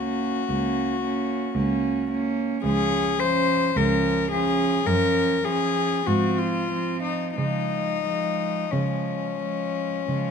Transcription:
cello
Already playing: C#2 A#3 C#4 F#4
0.49 C#2 A#3 C#4
1.02 A#3 C#4
1.54 C#2 A#3 C#4
2.09 A#3 C#4
2.64 C#2 F3 C#4 G#4
3.19 F3 C#4 C5
3.76 C#2 F3 C#4 A#4
4.32 F3 C#4 G#4
4.86 F#2 F3 C#4 A#4
5.44 F3 C#4 G#4
6.06 G#2 F3 C4 F#4
6.38 F4
6.72 F3 C4
7.03 D#4
7.36 C#3 F3 G#3 D#4
8.04 F3 G#3
8.71 C#3 F3 G#3 C#4
9.40 F3 G#3
10.08 C#3 F3 G#3

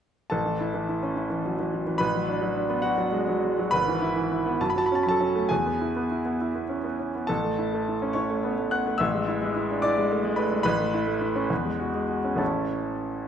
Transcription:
grand piano
0.30 A1 A4 A5
0.46 E3
0.60 E4
0.74 E3
0.89 E4
1.03 C#4
1.16 E4
1.30 E3
1.45 F#3
1.59 E3
1.74 F#3
1.87 E3
1.98 A1 B4 B5
2.15 F#3
2.28 D4
2.42 F#3
2.56 D4
2.70 B3
2.82 D4 F#4 F#5
2.98 F#3
3.12 G#3
3.28 F#3
3.44 G#3
3.59 F#3
3.71 G#1 B4 B5
3.88 E3
4.02 E4
4.16 E3
4.32 E4
4.46 B3
4.61 F#2 A5
4.70 B5
4.76 F#3 A5
4.86 B5
4.92 C#4 A5
5.03 F#3 B5
5.09 A4 A5
5.21 C#4
5.35 A3
5.49 E2 G#4 G#5
5.66 B3
5.81 E4
5.96 B3
6.11 E4
6.25 B3
6.41 E4
6.55 B3
6.69 C#4
6.84 B3
6.99 C#4
7.15 B3
7.27 A1 A4 A5
7.44 A3
7.59 E4
7.73 A3
7.88 E4
8.02 C#4
8.13 E4 C#5 C#6
8.30 A3
8.44 B3
8.58 A3
8.71 B3 F#5 F#6
8.87 A3
8.98 A1 E5 E6
9.14 G#3
9.28 E4
9.42 G#3
9.56 E4
9.70 D4
9.82 E4 D5 D6
9.98 G#3
10.12 A3
10.24 G#3
10.36 A3 B4 B5
10.52 G#3
10.63 A1 B4 B5
10.80 A3
10.94 E4
11.07 A3
11.21 E4
11.36 C#4
11.50 E2
11.65 G#3
11.80 F#4
11.95 G#3
12.09 F#4
12.25 C#4
12.36 A1 A3 C#4 E4 A4 A5

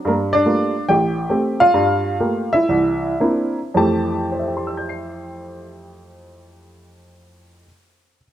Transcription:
upright piano
0.05 G2 A#3 A#4
0.33 D4 D5
0.45 G3 A3 A#3 F4
0.89 A1 G4 G5
1.29 A3 C4 G4
1.60 F4 F5
1.74 G2 G3
2.20 A3 A#3 F4 G4
2.53 E4 E5
2.69 C2 E3
3.20 A#3 C4 D4 E4
3.74 F2 E3 A3 G4 A5
4.32 C5
4.39 E5
4.47 G5
4.57 C6
4.67 E6
4.77 G6
4.89 C7

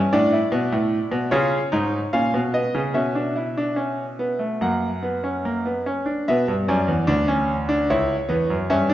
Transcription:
grand piano
Already playing: C#4
0.13 A2 D4 D5
0.33 E4
0.52 B2
0.72 A2
1.11 B2
1.31 C#3 F4 C#5
1.72 G#2 D#4
2.13 A#2 C#4 F5
2.34 B2
2.54 B3 D#5
2.75 C#3
2.94 B2 C#4 E5
3.15 D4
3.36 E4
3.57 D4
3.76 C#4
4.19 B3
4.39 A3
4.61 F#2 A#3 F#5
5.03 B3
5.24 C#4
5.45 A#3
5.66 B3
5.86 C#4
6.06 D4
6.28 B2 B3 E5
6.48 G2
6.68 F#2 C#4 D5
6.88 E2
7.07 D2 D4
7.28 C#4
7.69 D4
7.90 C#2 E4 C#5
8.29 E2 B3
8.50 F#2
8.70 G2 C#4 E5
8.90 D4

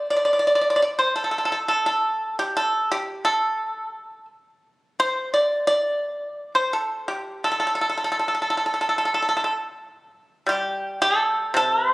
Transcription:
pipa
0.10 D5
0.17 D5
0.25 D5
0.33 D5
0.39 D5
0.47 D5
0.55 D5
0.61 D5
0.70 D5
0.76 D5
0.82 D5
0.99 C5
1.16 A4
1.24 A4
1.31 A4
1.38 A4
1.45 A4
1.52 A4
1.68 A4
1.86 A4
2.39 G4
2.57 A4
2.92 G4
3.25 A4
5.00 C5
5.34 D5
5.67 D5
6.55 C5
6.73 A4
7.08 G4
7.44 A4
7.52 A4
7.60 A4
7.67 A4
7.75 A4
7.81 A4
7.89 A4
7.98 A4
8.04 A4
8.12 A4
8.19 A4
8.28 A4
8.35 A4
8.42 A4
8.50 A4
8.57 A4
8.66 A4
8.74 A4
8.81 A4
8.89 A4
8.98 A4
9.05 A4
9.14 A4
9.22 A4
9.29 A4
9.37 A4
9.44 A4
10.46 G3 G4
11.02 A4
11.54 C3 A4
11.89 C5

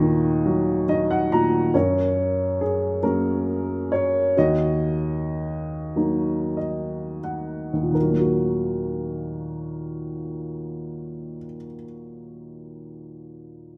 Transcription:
upright piano
Already playing: D#2 A#2 F#4 D#5
0.01 D#3
0.46 F#3
0.89 D#3 D#5
1.11 F#5
1.32 A#2 A#5
1.74 F#2 A#4 C#5
2.61 G#4
3.03 F#3 A#3 C#4 A#4
3.92 C#5
4.37 D#2 F#4 D#5
5.96 F#3 A#3 D#4
6.57 D#5
7.24 F#5
7.73 D#2
7.83 A#2
7.92 D#3 A#4
8.02 F#3
8.11 A#3
8.20 F#4

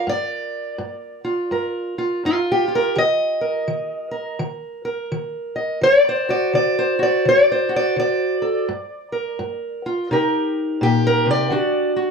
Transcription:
steel-string acoustic guitar
Already playing: A#4
0.07 G2 D5
0.78 G2
1.24 F4
1.51 G2 A#4
1.98 F4
2.25 G2 F4
2.52 G4
2.68 F4
2.75 A#4
2.96 D#3 D#5
3.41 A#4
3.68 D#3
4.11 A#4
4.39 D#3
4.85 A#4
5.12 D#3
5.56 D#5
5.81 D3 D5
6.09 C5
6.29 F#4 D5
6.53 D3 D5
6.79 C5
6.99 F#4 D5
7.25 D3 D5
7.52 C5
7.69 F#4
7.76 D5
7.96 D3 D5
8.42 A4
8.69 G2
9.12 A#4
9.39 G2
9.86 F4
10.11 C3 D#4 G4 A#4
10.81 A#2 G4
11.07 A#4
11.26 C3
11.31 D5
11.50 D3 D4 F#4
11.96 F#4

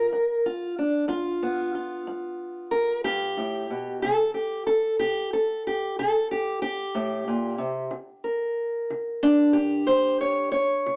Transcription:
steel-string acoustic guitar
Already playing: A#4
0.12 G2
0.46 F4
0.79 D4
1.08 G2 F4
1.43 B3
1.75 F4
2.07 G2
2.71 A#4
3.04 G2 G4
3.37 A2
3.70 B2
4.02 C3 A4
4.34 G4
4.67 A4
4.99 C3 G4
5.33 A4
5.67 G4
5.99 C3 A4
6.31 G4
6.62 G4
6.95 A2
7.28 A#2
7.58 C3
7.91 C#3
8.24 A#4
8.90 C#3
9.23 D4
9.53 G4
9.87 C#3 C5
10.21 C#5
10.52 C#5
10.86 C#3

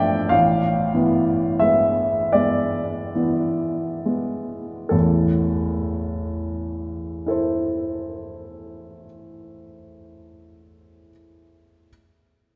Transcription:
upright piano
Already playing: A1 F3 A3 D4 D5 E5 G5
0.29 A1 F5
0.95 E3 B3
1.60 G#3 B3 E5
2.33 G#3 B3 D5
3.15 E3 B3
4.06 G#3 B3
4.89 A1 E2 A4
7.26 E4 A4 C5

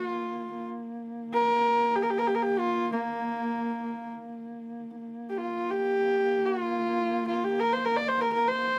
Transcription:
horsehead fiddle
Already playing: A#3 F#4
0.02 F4
0.55 A#3
1.34 A#4
1.95 G4
2.02 A#4
2.10 G4
2.18 A#4
2.27 G4
2.34 A#4
2.42 G4
2.59 F4
2.92 A#3
4.96 A#3
5.29 G4
5.37 F4
5.70 G4
6.45 F4
7.28 F4
7.44 G4
7.59 A#4
7.73 C5
7.85 A#4
7.96 D5
8.08 C5
8.21 A#4
8.33 A#4
8.48 C5

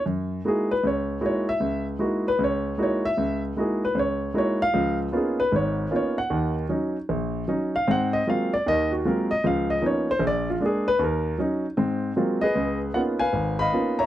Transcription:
grand piano
0.06 F#2
0.45 G#3 A#3 D#4 E4 F#4 G#4
0.71 B4
0.83 C#2 C#5
1.21 G#3 A#3 D#4 E4 F#4
1.26 C#5
1.49 E5
1.60 C#2
1.99 G#3 A#3 D#4 E4 F#4
2.03 G#4
2.28 B4
2.39 C#2
2.44 C#5
2.78 G#3 A#3 D#4 E4 F#4
2.83 C#5
3.05 E5
3.17 C#2
3.57 G#3 A#3 D#4 E4 F#4 G#4
3.85 B4
3.95 C#2 C5
3.99 C#5
4.34 G#3 A#3 D#4 E4 F#4
4.38 C#5
4.62 F5
4.74 C#2 F3
5.12 A#3 B3 C#4 D#4 F4
5.17 G#4
5.40 B4
5.52 G#1 G#2 C#5
5.91 A#3 B3 C#4 D#4 F4
5.96 C#5
6.18 F#5
6.30 D#2 D#3
6.69 F#3 C#4 D#4
7.09 A#1
7.48 F#3 C#4 D#4
7.76 F5
7.88 G#2 C4 F#5
8.13 D#5
8.27 F#3 G#3 A#3 C4 F4 F5
8.54 D5
8.66 D#2 D#3 D#5
8.92 F#4
9.05 F#3 G#3 A#3 C4 F4 A#4
9.31 D#5
9.44 C#2 F3 F5
9.70 D#5
9.81 F3 A#3 B3 C#4 D#4
9.86 C#5
10.11 C5
10.19 A#1
10.27 D5
10.50 F4
10.60 G#3 A#3 D4
10.66 G#4
10.88 B4
10.99 D#2
11.03 A#4
11.38 F#3 C#4 D#4
11.77 G#2 C4
12.16 F#3 G#3 A#3 C4 F4
12.41 G#4 B4 D#5
12.55 C#2
12.94 A#3 B3 C#4 D#4 F4 F#5
13.19 B4 F5 G#5
13.33 G#1
13.59 D#5 F5 B5
13.72 A#3 B3 C#4 D#4 F4
13.99 C#5 E5 A#5

